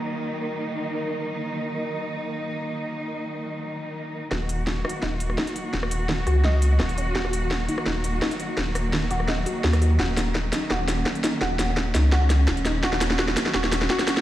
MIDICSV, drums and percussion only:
0, 0, Header, 1, 2, 480
1, 0, Start_track
1, 0, Key_signature, -6, "minor"
1, 0, Tempo, 355030
1, 78, Time_signature, 4, 2, 24, 8
1, 19213, End_track
2, 0, Start_track
2, 0, Title_t, "Drums"
2, 5833, Note_on_c, 9, 36, 90
2, 5833, Note_on_c, 9, 37, 52
2, 5833, Note_on_c, 9, 38, 46
2, 5968, Note_off_c, 9, 36, 0
2, 5968, Note_off_c, 9, 37, 0
2, 5968, Note_off_c, 9, 38, 0
2, 6073, Note_on_c, 9, 42, 78
2, 6208, Note_off_c, 9, 42, 0
2, 6312, Note_on_c, 9, 38, 48
2, 6313, Note_on_c, 9, 36, 90
2, 6447, Note_off_c, 9, 38, 0
2, 6448, Note_off_c, 9, 36, 0
2, 6553, Note_on_c, 9, 37, 80
2, 6617, Note_on_c, 9, 42, 64
2, 6688, Note_off_c, 9, 37, 0
2, 6752, Note_off_c, 9, 42, 0
2, 6791, Note_on_c, 9, 38, 45
2, 6793, Note_on_c, 9, 36, 90
2, 6927, Note_off_c, 9, 38, 0
2, 6928, Note_off_c, 9, 36, 0
2, 7034, Note_on_c, 9, 42, 78
2, 7161, Note_on_c, 9, 37, 52
2, 7169, Note_off_c, 9, 42, 0
2, 7273, Note_on_c, 9, 36, 96
2, 7273, Note_on_c, 9, 38, 51
2, 7297, Note_off_c, 9, 37, 0
2, 7399, Note_on_c, 9, 42, 36
2, 7408, Note_off_c, 9, 36, 0
2, 7408, Note_off_c, 9, 38, 0
2, 7514, Note_off_c, 9, 42, 0
2, 7514, Note_on_c, 9, 42, 62
2, 7649, Note_off_c, 9, 42, 0
2, 7753, Note_on_c, 9, 38, 50
2, 7754, Note_on_c, 9, 36, 91
2, 7881, Note_on_c, 9, 37, 73
2, 7888, Note_off_c, 9, 38, 0
2, 7889, Note_off_c, 9, 36, 0
2, 7994, Note_on_c, 9, 42, 82
2, 8016, Note_off_c, 9, 37, 0
2, 8129, Note_off_c, 9, 42, 0
2, 8233, Note_on_c, 9, 38, 54
2, 8234, Note_on_c, 9, 36, 91
2, 8369, Note_off_c, 9, 36, 0
2, 8369, Note_off_c, 9, 38, 0
2, 8473, Note_on_c, 9, 37, 50
2, 8473, Note_on_c, 9, 42, 65
2, 8608, Note_off_c, 9, 37, 0
2, 8608, Note_off_c, 9, 42, 0
2, 8711, Note_on_c, 9, 38, 53
2, 8712, Note_on_c, 9, 36, 92
2, 8847, Note_off_c, 9, 38, 0
2, 8848, Note_off_c, 9, 36, 0
2, 8950, Note_on_c, 9, 42, 76
2, 9086, Note_off_c, 9, 42, 0
2, 9188, Note_on_c, 9, 37, 78
2, 9188, Note_on_c, 9, 38, 53
2, 9191, Note_on_c, 9, 36, 99
2, 9318, Note_on_c, 9, 42, 37
2, 9323, Note_off_c, 9, 37, 0
2, 9323, Note_off_c, 9, 38, 0
2, 9326, Note_off_c, 9, 36, 0
2, 9432, Note_off_c, 9, 42, 0
2, 9432, Note_on_c, 9, 42, 66
2, 9568, Note_off_c, 9, 42, 0
2, 9671, Note_on_c, 9, 36, 92
2, 9672, Note_on_c, 9, 38, 58
2, 9799, Note_on_c, 9, 37, 49
2, 9806, Note_off_c, 9, 36, 0
2, 9807, Note_off_c, 9, 38, 0
2, 9912, Note_on_c, 9, 42, 81
2, 9934, Note_off_c, 9, 37, 0
2, 10047, Note_off_c, 9, 42, 0
2, 10151, Note_on_c, 9, 36, 95
2, 10151, Note_on_c, 9, 38, 57
2, 10286, Note_off_c, 9, 36, 0
2, 10286, Note_off_c, 9, 38, 0
2, 10390, Note_on_c, 9, 42, 64
2, 10516, Note_on_c, 9, 37, 72
2, 10525, Note_off_c, 9, 42, 0
2, 10630, Note_on_c, 9, 38, 58
2, 10631, Note_on_c, 9, 36, 93
2, 10651, Note_off_c, 9, 37, 0
2, 10765, Note_off_c, 9, 38, 0
2, 10766, Note_off_c, 9, 36, 0
2, 10871, Note_on_c, 9, 42, 78
2, 11006, Note_off_c, 9, 42, 0
2, 11112, Note_on_c, 9, 37, 51
2, 11112, Note_on_c, 9, 38, 64
2, 11113, Note_on_c, 9, 36, 101
2, 11238, Note_on_c, 9, 42, 37
2, 11248, Note_off_c, 9, 36, 0
2, 11248, Note_off_c, 9, 37, 0
2, 11248, Note_off_c, 9, 38, 0
2, 11352, Note_off_c, 9, 42, 0
2, 11352, Note_on_c, 9, 42, 62
2, 11487, Note_off_c, 9, 42, 0
2, 11592, Note_on_c, 9, 36, 96
2, 11592, Note_on_c, 9, 38, 67
2, 11727, Note_off_c, 9, 36, 0
2, 11727, Note_off_c, 9, 38, 0
2, 11833, Note_on_c, 9, 37, 76
2, 11833, Note_on_c, 9, 42, 79
2, 11968, Note_off_c, 9, 37, 0
2, 11968, Note_off_c, 9, 42, 0
2, 12073, Note_on_c, 9, 36, 94
2, 12074, Note_on_c, 9, 38, 67
2, 12208, Note_off_c, 9, 36, 0
2, 12209, Note_off_c, 9, 38, 0
2, 12311, Note_on_c, 9, 42, 63
2, 12439, Note_on_c, 9, 37, 49
2, 12446, Note_off_c, 9, 42, 0
2, 12549, Note_on_c, 9, 38, 64
2, 12553, Note_on_c, 9, 36, 96
2, 12574, Note_off_c, 9, 37, 0
2, 12685, Note_off_c, 9, 38, 0
2, 12688, Note_off_c, 9, 36, 0
2, 12793, Note_on_c, 9, 42, 74
2, 12928, Note_off_c, 9, 42, 0
2, 13033, Note_on_c, 9, 38, 71
2, 13034, Note_on_c, 9, 36, 99
2, 13159, Note_on_c, 9, 37, 74
2, 13159, Note_on_c, 9, 42, 36
2, 13169, Note_off_c, 9, 36, 0
2, 13169, Note_off_c, 9, 38, 0
2, 13273, Note_off_c, 9, 42, 0
2, 13273, Note_on_c, 9, 42, 64
2, 13295, Note_off_c, 9, 37, 0
2, 13408, Note_off_c, 9, 42, 0
2, 13512, Note_on_c, 9, 38, 75
2, 13514, Note_on_c, 9, 36, 97
2, 13647, Note_off_c, 9, 38, 0
2, 13649, Note_off_c, 9, 36, 0
2, 13753, Note_on_c, 9, 38, 78
2, 13753, Note_on_c, 9, 42, 76
2, 13888, Note_off_c, 9, 38, 0
2, 13888, Note_off_c, 9, 42, 0
2, 13993, Note_on_c, 9, 38, 75
2, 13994, Note_on_c, 9, 36, 95
2, 14128, Note_off_c, 9, 38, 0
2, 14129, Note_off_c, 9, 36, 0
2, 14231, Note_on_c, 9, 38, 77
2, 14231, Note_on_c, 9, 42, 63
2, 14366, Note_off_c, 9, 38, 0
2, 14366, Note_off_c, 9, 42, 0
2, 14473, Note_on_c, 9, 36, 94
2, 14473, Note_on_c, 9, 38, 75
2, 14608, Note_off_c, 9, 36, 0
2, 14608, Note_off_c, 9, 38, 0
2, 14713, Note_on_c, 9, 38, 77
2, 14713, Note_on_c, 9, 42, 75
2, 14848, Note_off_c, 9, 38, 0
2, 14848, Note_off_c, 9, 42, 0
2, 14953, Note_on_c, 9, 36, 102
2, 14953, Note_on_c, 9, 38, 81
2, 15079, Note_on_c, 9, 42, 36
2, 15088, Note_off_c, 9, 36, 0
2, 15088, Note_off_c, 9, 38, 0
2, 15193, Note_off_c, 9, 42, 0
2, 15193, Note_on_c, 9, 38, 81
2, 15193, Note_on_c, 9, 42, 64
2, 15328, Note_off_c, 9, 38, 0
2, 15328, Note_off_c, 9, 42, 0
2, 15432, Note_on_c, 9, 38, 82
2, 15433, Note_on_c, 9, 36, 100
2, 15567, Note_off_c, 9, 38, 0
2, 15568, Note_off_c, 9, 36, 0
2, 15670, Note_on_c, 9, 38, 83
2, 15670, Note_on_c, 9, 42, 75
2, 15805, Note_off_c, 9, 38, 0
2, 15805, Note_off_c, 9, 42, 0
2, 15911, Note_on_c, 9, 36, 99
2, 15911, Note_on_c, 9, 38, 85
2, 16046, Note_off_c, 9, 36, 0
2, 16046, Note_off_c, 9, 38, 0
2, 16151, Note_on_c, 9, 38, 83
2, 16151, Note_on_c, 9, 42, 63
2, 16286, Note_off_c, 9, 38, 0
2, 16286, Note_off_c, 9, 42, 0
2, 16388, Note_on_c, 9, 38, 86
2, 16390, Note_on_c, 9, 36, 93
2, 16523, Note_off_c, 9, 38, 0
2, 16526, Note_off_c, 9, 36, 0
2, 16629, Note_on_c, 9, 38, 86
2, 16629, Note_on_c, 9, 42, 77
2, 16764, Note_off_c, 9, 38, 0
2, 16764, Note_off_c, 9, 42, 0
2, 16867, Note_on_c, 9, 38, 92
2, 16872, Note_on_c, 9, 36, 102
2, 16995, Note_on_c, 9, 42, 36
2, 17003, Note_off_c, 9, 38, 0
2, 17007, Note_off_c, 9, 36, 0
2, 17108, Note_off_c, 9, 42, 0
2, 17108, Note_on_c, 9, 38, 86
2, 17108, Note_on_c, 9, 42, 61
2, 17243, Note_off_c, 9, 38, 0
2, 17243, Note_off_c, 9, 42, 0
2, 17350, Note_on_c, 9, 38, 94
2, 17351, Note_on_c, 9, 36, 96
2, 17476, Note_off_c, 9, 38, 0
2, 17476, Note_on_c, 9, 38, 77
2, 17487, Note_off_c, 9, 36, 0
2, 17590, Note_off_c, 9, 38, 0
2, 17590, Note_on_c, 9, 38, 100
2, 17590, Note_on_c, 9, 42, 81
2, 17717, Note_off_c, 9, 38, 0
2, 17717, Note_on_c, 9, 38, 82
2, 17725, Note_off_c, 9, 42, 0
2, 17829, Note_off_c, 9, 38, 0
2, 17829, Note_on_c, 9, 38, 94
2, 17830, Note_on_c, 9, 36, 96
2, 17957, Note_off_c, 9, 38, 0
2, 17957, Note_on_c, 9, 38, 82
2, 17965, Note_off_c, 9, 36, 0
2, 18071, Note_off_c, 9, 38, 0
2, 18071, Note_on_c, 9, 38, 97
2, 18071, Note_on_c, 9, 42, 67
2, 18197, Note_off_c, 9, 38, 0
2, 18197, Note_on_c, 9, 38, 82
2, 18207, Note_off_c, 9, 42, 0
2, 18309, Note_off_c, 9, 38, 0
2, 18309, Note_on_c, 9, 38, 94
2, 18311, Note_on_c, 9, 36, 97
2, 18438, Note_off_c, 9, 38, 0
2, 18438, Note_on_c, 9, 38, 87
2, 18446, Note_off_c, 9, 36, 0
2, 18553, Note_off_c, 9, 38, 0
2, 18553, Note_on_c, 9, 38, 96
2, 18553, Note_on_c, 9, 42, 77
2, 18679, Note_off_c, 9, 38, 0
2, 18679, Note_on_c, 9, 38, 84
2, 18688, Note_off_c, 9, 42, 0
2, 18790, Note_off_c, 9, 38, 0
2, 18790, Note_on_c, 9, 38, 98
2, 18792, Note_on_c, 9, 36, 103
2, 18917, Note_off_c, 9, 38, 0
2, 18917, Note_on_c, 9, 38, 90
2, 18917, Note_on_c, 9, 42, 37
2, 18927, Note_off_c, 9, 36, 0
2, 19030, Note_off_c, 9, 38, 0
2, 19030, Note_off_c, 9, 42, 0
2, 19030, Note_on_c, 9, 38, 98
2, 19030, Note_on_c, 9, 42, 65
2, 19157, Note_off_c, 9, 38, 0
2, 19157, Note_on_c, 9, 38, 87
2, 19165, Note_off_c, 9, 42, 0
2, 19213, Note_off_c, 9, 38, 0
2, 19213, End_track
0, 0, End_of_file